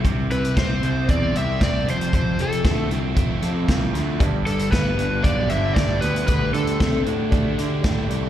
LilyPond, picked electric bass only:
\new Staff \with { instrumentName = "Picked electric bass" } { \clef bass \time 4/4 \key g \mixolydian \tempo 4 = 116 c,8 c,8 c,8 c,8 e,8 c,8 c,8 f,,8 | f,,8 f,,8 d,8 c,8 f,,8 f,8 c,8 d,8 | g,,8 g,,8 g,,8 g,,8 b,,8 g,,8 g,,8 d,8 | d,8 d,8 c8 a,8 d,8 d8 a,8 c,8 | }